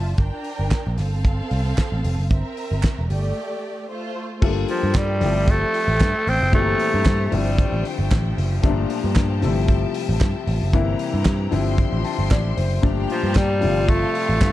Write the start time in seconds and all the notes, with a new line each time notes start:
Already playing: F#1 F4 E5 A5
0.18 G1 D4 A#4 G5, kick, closed hi-hat
0.44 open hi-hat
0.59 G1
0.71 kick, snare, clap, closed hi-hat
0.87 A#1
0.98 G1 C4 A4 F5, snare, open hi-hat
1.25 kick, closed hi-hat
1.51 C2, open hi-hat
1.78 kick, snare, clap, closed hi-hat
1.92 A1
2.04 F1, open hi-hat
2.18 F#1
2.31 G1 C4 A#4 E5, kick, closed hi-hat
2.57 open hi-hat
2.71 G1
2.83 kick, snare, clap, closed hi-hat
2.99 E1
3.10 G1 A3 G4 D5, open hi-hat
3.89 A3 F4 C5
4.42 G1 F3 G3 A3 A#3 D4 F4 A4 G5, kick, crash
4.48 A#3
4.68 F3, open hi-hat
4.83 G2
4.94 G2 G3, kick, snare, clap, closed hi-hat
5.20 G1 F3 A3 C4 E4 G4 E5 G5, snare, open hi-hat
5.48 A3, kick, closed hi-hat
5.74 open hi-hat
5.88 A1
6.00 G2, kick, snare, clap, closed hi-hat
6.27 A1 C4, open hi-hat
6.41 F#1
6.52 G1 A#2 E3 G3 A3 C4 F#4 G4 C5 A#5, kick, closed hi-hat
6.60 G4
6.79 open hi-hat
6.94 G2
7.05 G2, kick, snare, clap, closed hi-hat
7.26 A3
7.31 G1 D3 F3 G3 C4 E4 G5, open hi-hat
7.58 kick, closed hi-hat
7.72 A1
7.85 open hi-hat
7.99 G1
8.11 A1, kick, snare, clap, closed hi-hat
8.38 F#1, open hi-hat
8.63 G1 A2 F3 G3 A3 D4 G5 A5 A#5, kick, closed hi-hat
8.69 A#2
8.90 open hi-hat
9.04 G2
9.15 G2, kick, snare, clap, closed hi-hat
9.42 G1 C3 F3 G3 A3 E4 E5, snare, open hi-hat
9.68 kick, closed hi-hat
9.94 open hi-hat
10.09 A1
10.21 G2, kick, snare, clap, closed hi-hat
10.47 A1, open hi-hat
10.61 F#1
10.73 G1 C3 E3 G3 A#3 E4 C5 G5 A#5, kick, closed hi-hat
10.99 open hi-hat
11.14 G2
11.25 G2, kick, snare, clap, closed hi-hat
11.51 G1 D3 F3 G3 C4 E4 E5 C6, open hi-hat
11.78 kick, closed hi-hat
11.93 A1
12.04 A5, open hi-hat
12.19 G1
12.31 A1 D5, kick, snare, clap, closed hi-hat
12.57 F#1 C5, open hi-hat
12.82 G1 A#2 F3 G3 A3 D4 G4 F5 G5 A5 A#5, kick, closed hi-hat
13.10 F3, open hi-hat
13.24 G2
13.35 G2 G3, kick, snare, clap, closed hi-hat
13.60 G1 C3 F3 G3 A3 F4 F5 G5, open hi-hat
13.89 A3, kick, closed hi-hat
14.15 open hi-hat
14.29 A1
14.41 G2, kick, snare, clap, closed hi-hat